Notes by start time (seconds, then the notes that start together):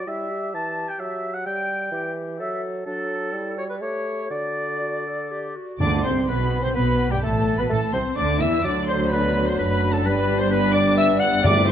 0.06 G3 E4 E5
0.30 G4
0.54 E3 A5
0.89 G5
0.99 F#3 E5
1.34 F#5
1.46 G3 G5
1.92 E3 G4
2.39 F#3 A4 E5
2.86 F#3 D4 A4
3.32 G3 E4
3.58 F#4 C#5
3.69 B4
3.81 A3 G4 C#5
4.30 D3 F#4 D5
4.80 F#4
5.07 A4
5.32 G4
5.56 F#4
5.79 D2 G2 D3 D4 D5 D6
6.03 C2 C3 C4 C5 C6
6.27 B1 B2 B3 B4 B5
6.62 C3 C4 C5 C6
6.73 B1 B2 B3 B4 B5
7.09 G2 G3 G4 G5
7.21 A1 A2 A3 A4 A5
7.56 B2 B3 B4 B5
7.69 A1 A2 A3 A4 A5
7.73 A4
7.93 C2 C3 C4 C5 C6
8.15 D2 D3 D4 D5 D6
8.38 E2 E3 E4 E5 E6
8.63 D2 D3 F#3 D4 F#4 D5 D6
8.86 C5 C6
9.10 B3 B4 B5
9.46 C5 C6
9.58 F#1 F#2 A3 D4 B4 B5
9.93 A4 A5
10.05 G1 G2 G3 B4 D5 B5
10.38 C5 C6
10.50 G3 B3 B4 D5 B5
10.74 D5 D6
10.97 E5 E6
11.20 F#5 F#6
11.43 G1 G2 G3 A3 C4 E4 D5 E5 D6
11.67 C5 C6